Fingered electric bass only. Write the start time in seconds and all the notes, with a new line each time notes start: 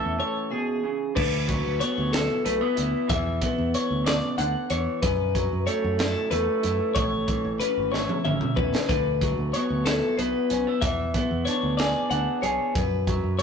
0.05 E2
1.17 D2
1.66 D2
1.98 D2
2.46 B1
2.78 D2
3.10 E2
3.58 E2
3.91 D2
4.39 D2
4.71 E2
5.03 F#2
5.52 F#2
5.84 F#2
6.32 E2
6.64 F#2
6.96 A1
7.45 A1
7.77 G#1
8.26 G#1
8.57 E2
8.89 D2
9.38 D2
9.70 D2
10.19 B1
10.51 B1
10.82 E2
11.31 E2
11.63 D2
12.11 D2
12.43 B1
12.75 F#2
13.24 F#2